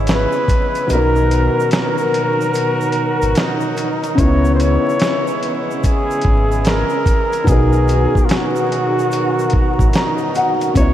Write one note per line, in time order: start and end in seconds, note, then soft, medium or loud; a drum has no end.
0.00 0.26 G#1 medium
0.00 0.85 C#3 medium
0.00 0.86 C#3 medium
0.00 0.86 E3 medium
0.00 0.86 G#3 medium
0.00 0.86 B3 medium
0.00 7.43 B3 medium
0.00 0.86 E4 medium
0.00 0.87 E4 medium
0.00 0.88 C#5 medium
0.07 0.87 B4 loud
0.07 snare loud
0.07 closed hi-hat medium
0.07 shaker medium
0.32 shaker soft
0.48 kick medium
0.48 closed hi-hat medium
0.48 shaker medium
0.75 closed hi-hat soft
0.75 shaker soft
0.87 1.49 B1 loud
0.87 4.13 B2 medium
0.87 4.15 D#3 medium
0.87 4.15 F#3 medium
0.87 4.15 B3 medium
0.87 4.15 F#4 medium
0.87 4.15 A#4 medium
0.87 closed hi-hat medium
0.87 shaker medium
0.92 4.16 D#4 medium
0.92 1.69 A#4 loud
0.92 4.17 A#4 medium
1.16 shaker soft
1.31 closed hi-hat medium
1.31 shaker soft
1.60 shaker soft
1.71 3.39 A#4 loud
1.71 snare loud
1.71 closed hi-hat medium
1.71 shaker medium
1.98 shaker soft
2.14 closed hi-hat medium
2.41 shaker medium
2.54 closed hi-hat medium
2.54 shaker medium
2.81 shaker medium
2.92 closed hi-hat medium
3.22 3.35 G#1 medium
3.22 closed hi-hat soft
3.22 shaker medium
3.35 4.21 D#4 medium
3.35 snare loud
3.35 closed hi-hat medium
3.35 shaker medium
3.61 shaker soft
3.77 closed hi-hat medium
3.77 shaker soft
4.04 closed hi-hat soft
4.04 shaker soft
4.15 4.78 C#2 loud
4.15 7.41 C#3 medium
4.15 7.43 C#3 medium
4.15 7.43 E3 medium
4.15 7.43 G#3 medium
4.15 7.43 C#4 medium
4.15 7.43 E4 medium
4.15 kick loud
4.15 closed hi-hat medium
4.15 shaker medium
4.20 7.45 B3 medium
4.20 7.44 E4 medium
4.20 4.55 C#5 loud
4.45 shaker soft
4.55 4.63 C5 medium
4.60 5.61 C#5 loud
4.60 closed hi-hat medium
4.60 shaker soft
4.89 shaker soft
5.00 snare loud
5.00 closed hi-hat medium
5.00 shaker medium
5.27 shaker medium
5.43 closed hi-hat medium
5.71 shaker soft
5.83 6.69 G#4 loud
5.83 kick medium
5.83 closed hi-hat medium
5.83 shaker medium
6.11 shaker medium
6.21 6.84 G#1 medium
6.21 kick medium
6.21 closed hi-hat medium
6.52 shaker medium
6.65 7.51 A#4 loud
6.65 snare loud
6.65 closed hi-hat medium
6.65 shaker medium
6.90 shaker soft
7.06 kick medium
7.06 closed hi-hat medium
7.06 shaker soft
7.33 closed hi-hat soft
7.33 shaker soft
7.44 8.07 B1 loud
7.44 10.70 B2 medium
7.44 10.73 D#3 medium
7.44 10.73 F#3 medium
7.44 10.72 B3 medium
7.44 10.94 B3 medium
7.44 10.73 F#4 medium
7.44 10.73 A#4 medium
7.44 kick loud
7.44 closed hi-hat medium
7.44 shaker medium
7.49 10.73 D#4 medium
7.49 8.27 G#4 loud
7.49 10.74 A#4 medium
7.73 shaker soft
7.88 closed hi-hat medium
7.88 shaker soft
8.15 kick medium
8.15 shaker medium
8.25 8.32 F4 medium
8.25 closed hi-hat medium
8.30 9.91 F#4 loud
8.30 snare loud
8.30 shaker medium
8.56 shaker medium
8.72 closed hi-hat medium
8.99 shaker medium
9.12 closed hi-hat medium
9.12 shaker medium
9.39 shaker medium
9.50 kick medium
9.50 closed hi-hat medium
9.79 9.92 G#1 medium
9.79 kick medium
9.79 shaker medium
9.89 9.96 E4 medium
9.93 10.53 D#4 medium
9.93 10.33 A#5 medium
9.93 snare loud
9.93 closed hi-hat medium
9.93 shaker medium
10.18 shaker soft
10.35 10.74 F#5 medium
10.35 closed hi-hat medium
10.35 shaker soft
10.61 closed hi-hat soft
10.61 shaker soft
10.74 10.94 C#2 loud
10.74 10.94 C#3 medium
10.74 10.94 E3 medium
10.74 10.94 G#3 medium
10.74 10.94 B3 medium
10.74 10.94 E4 medium
10.74 10.93 C#5 loud
10.74 kick loud
10.74 closed hi-hat medium
10.74 shaker medium
10.79 10.94 E4 medium
10.79 10.94 C#5 medium